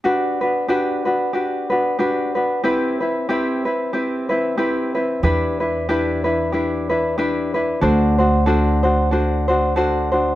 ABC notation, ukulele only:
X:1
M:4/4
L:1/8
Q:"Swing" 1/4=92
K:G
V:1 name="Ukulele"
[DFGB] [DFB] [DFGB] [DFB] [DFGB] [DFB] [DFGB] [DFB] | [CEGB] [CEB] [CEGB] [CEB] [CEGB] [CEB] [CEGB] [CEB] | [DEGB] [DEB] [DEGB] [DEB] [DEGB] [DEB] [DEGB] [DEB] | [DFAc] [DFc] [DFAc] [DFc] [DFAc] [DFc] [DFAc] [DFc] |]